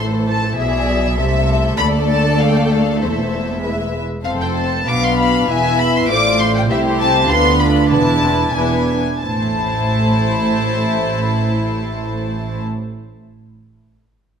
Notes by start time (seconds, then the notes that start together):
Already playing: A1 A2 E3 E4 A4 C5
0.28 A5
0.57 B1 B2 G#4 D5 E5
1.18 C2 C3 A3 A4 E5
1.78 D2 A4 D5 B5
2.09 A5
2.40 F5
2.49 G5
2.55 F5
2.64 G5
2.72 F5
3.01 E1 E2 E4 C5 E5
3.63 G#3 B4 E5
4.24 F1 F2 C4 A4 C5 F5
4.41 G5
4.56 A5
4.87 B1 B2 B3 D4 B4 F5 D6
5.04 C6
5.18 B5
5.48 E1 E2 B3 E4 E5 G#5
5.79 B5
5.96 C6
6.08 A1 A2 A3 F4 C5 D5 D6
6.40 C6
6.56 G5
6.68 C2 C3 A3 E4 G4 C5 E5
7.00 A5
7.28 D2 D3 B3 D4 F4 B4 C6
7.59 B5
7.90 E1 E2 B3 E4 B4 A5
8.23 C4
8.53 E1 E2 B3 D4 E4 B4 G#5
9.20 A1 A2 A3 E4 C5 A5